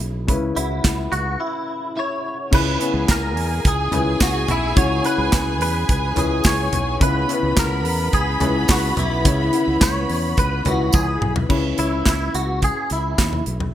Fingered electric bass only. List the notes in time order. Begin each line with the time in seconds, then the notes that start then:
0.00 B1
0.28 C#2
0.56 C#2
0.84 C#2
1.12 C#2
2.53 C#2
2.94 C#2
3.35 E2
3.65 C#2
3.92 C#2
4.21 C#2
4.48 B1
4.76 C#2
5.18 C#2
5.33 C#2
5.60 E2
5.89 C#2
6.16 C#2
6.44 C#2
6.73 B1
7.01 C#2
7.43 C#2
7.57 C#2
7.85 E2
8.13 C#2
8.40 C#2
8.69 C#2
8.97 B1
9.25 C#2
9.67 C#2
9.81 C#2
10.10 E2
10.37 C#2
10.66 C#2
10.94 C#2
11.21 B1
11.49 C#2
11.78 C#2
12.06 C#2
12.34 C#2
12.91 C#2
13.18 D#2
13.47 B1